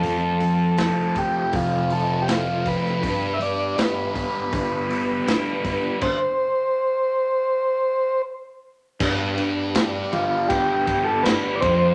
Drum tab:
CC |----------------|----------------|x---------------|x-x-x-x-x-x-x-x-|
HH |o-o-o-o-o-o-o-o-|o-o-o-o-o-o-o-o-|----------------|----------------|
SD |----o-------o--o|----o-------o---|----------------|----o-------o---|
BD |------o-o-----o-|o-----o-o-----o-|o---------------|o-------o-o---o-|